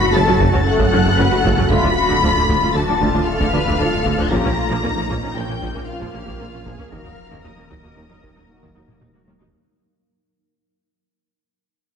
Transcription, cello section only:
Already playing: F#4
0.14 A4
0.40 F#4
0.66 A4
1.19 B4
1.45 A4
1.71 F4
1.97 F#4
2.23 F4
2.49 F4
2.75 F#4
3.01 F4
3.28 A4
3.53 B4
3.80 A4
4.32 G4
4.58 F4
4.85 D#4
5.37 C#4
5.63 D#4
5.89 F4
6.15 G4
6.41 F4
6.67 G#4
6.93 A#4

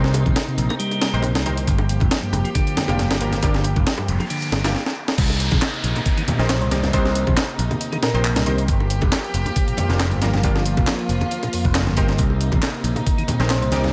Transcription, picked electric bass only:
Already playing: C2
0.26 A#1
0.58 A#1
1.14 A#1
1.35 C2
1.67 G1
2.01 F1
2.33 F1
2.89 F1
3.11 G1
3.43 G1
3.76 F1
4.09 F1
4.52 G1
5.18 C2
5.52 A#1
5.84 A#1
6.39 A#1
6.61 C2
6.93 C2
7.27 A#1
7.59 A#1
8.14 A#1
8.36 C2
8.68 G1
9.02 F1
9.34 F1
9.89 F1
10.11 G1
10.43 G1
10.77 F1
11.09 F1
11.65 F1
11.87 G1
12.19 C2
12.53 A#1
12.84 A#1
13.39 A#1
13.61 C2

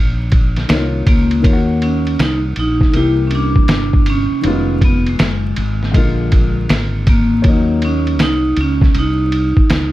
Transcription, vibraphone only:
1.09 A#3
1.83 C#4
2.22 D#4
2.59 D#4
2.97 E4
3.27 C#4
3.35 D4
4.10 C#4
4.84 B3
5.09 G#3
7.09 A#3
7.85 C#4
8.22 D#4
8.61 C#4
8.99 D#4

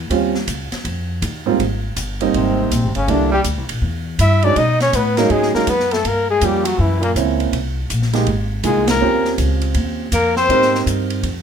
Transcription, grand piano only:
0.10 G3 C4 C#4 F4
1.46 G#2 G3 A#3 C4 F4
2.21 G3 A#3 C4 D#4
3.08 G3 A#3 D4 E4
4.43 F#3 G#3 C#4 D#4
5.17 F#3 G#3 C#4 D#4
5.54 F#3 G#3 C#4 D#4
6.42 G3 A#3 C#4 F4
7.16 A#3 C4 C#4 E4
8.13 G#3 A#3 D#4 G4
8.64 G#3 A#3 D#4 F4
9.01 C4 C#4 F4 G4
10.50 C4 D#4 G4 A#4

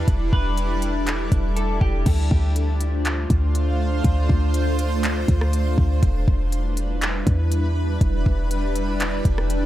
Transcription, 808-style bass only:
0.08 E1
0.33 E1
1.32 E1
1.81 E1
2.06 D2
2.31 D2
3.30 D2
4.04 D2
4.29 D2
5.28 D2
5.78 D2
6.03 E1
6.28 E1
7.27 E2
8.01 E1
8.26 E1
9.25 E1

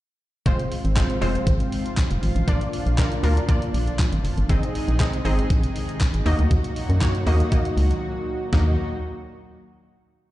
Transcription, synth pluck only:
0.46 G#3 C4 F4 C5
0.96 G#3 C4 F4 C5
1.21 G#3 C4 F4 C5
2.48 A#3 D4 F4 D5
2.98 A#3 D4 F4 A#4
3.23 A#3 D4 F4 A#4
3.48 A#3 D4 F4 D5
4.49 C4 D#4 G#4 D#5
5.00 C4 D#4 G#4 D#5
5.25 C4 D#4 G#4 D#5
6.26 A#3 D#4 F#4 D#5
7.01 A#3 D#4 F#4 C#5
7.26 A#3 D#4 F#4 D#5
7.52 A#3 D#4 F#4 D#5
8.53 A#3 D#4 F#4 D#5

